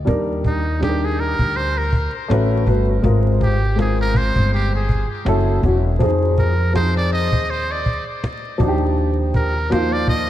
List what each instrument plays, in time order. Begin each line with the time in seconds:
0.05 upright bass D#2, upright piano G3 D4 D#4 A#4, cajon bass
0.45 muted trumpet D#4, cajon bass
0.79 upright piano G3 D4 D#4 G#4, muted trumpet G4, cajon slap
0.89 upright piano A#4
1.05 muted trumpet G#4
1.19 muted trumpet A#4, cajon slap
1.39 upright bass D2, cajon bass
1.55 muted trumpet C5, cajon slap
1.78 muted trumpet A#4
1.93 cajon bass
2.28 upright bass A1, upright piano A3 C#4 F#4 B4, cajon slap
2.65 upright bass G1, upright piano A3 C#4 F#4 B4, cajon bass
2.88 cajon slap
3.02 upright bass G#1, upright piano G#3 C4 F4 A#4, cajon bass
3.41 muted trumpet G4, cajon bass
3.75 upright piano G#3 C4 F4 A#4, cajon slap
3.80 muted trumpet G#4
4.01 muted trumpet A#4
4.14 muted trumpet C5, cajon bass
4.36 upright bass G1, cajon bass
4.52 muted trumpet G4, cajon slap
4.76 muted trumpet G#4
4.89 cajon bass
5.25 upright bass F#1, upright piano F#3 C#4 E4 A4, cajon slap
5.62 upright bass E1, upright piano F#3 C#4 E4 F#4, cajon bass
5.84 cajon slap
5.99 upright bass F2, upright piano F3 C4 D#4 G#4, cajon bass
6.38 muted trumpet A#4, cajon bass
6.73 upright piano F3 C4 D#4 G#4, muted trumpet C5, cajon slap
6.97 muted trumpet D5
7.12 muted trumpet D#5, cajon slap
7.32 upright bass D#2, cajon bass
7.49 muted trumpet C5, cajon slap
7.71 muted trumpet D5
7.86 cajon bass
8.24 cajon slap
8.58 upright bass D#2, upright piano F3 D4 D#4 F#4, cajon bass
8.68 upright piano G4
8.82 cajon slap
8.97 cajon slap
9.34 muted trumpet A#4, cajon bass
9.70 upright piano F3 A#3 D#4 F4, muted trumpet C5, cajon slap
9.93 muted trumpet D5
10.08 muted trumpet D#5, cajon bass